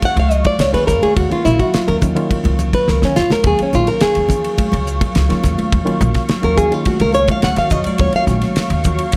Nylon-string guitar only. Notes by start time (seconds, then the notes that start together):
0.05 F#5
0.20 F5
0.31 D#5
0.47 D5
0.61 C#5
0.74 B4
0.87 A#4
1.03 G#4
1.17 F#4
1.32 F4
1.45 E4
1.60 F#4
1.74 F4
1.88 A#4
2.75 B4
2.89 A#4
3.05 C#4
3.16 F4
3.32 A#4
3.47 G#4
3.63 C#4
3.75 F4
3.88 A#4
4.02 G#4
6.44 A#4
6.57 G#4
6.74 F4
6.87 F#4
7.01 A#4
7.15 C#5
7.31 F5
7.44 F#5
7.58 F5
7.72 D#5
7.87 D5
8.01 C#5
8.16 F5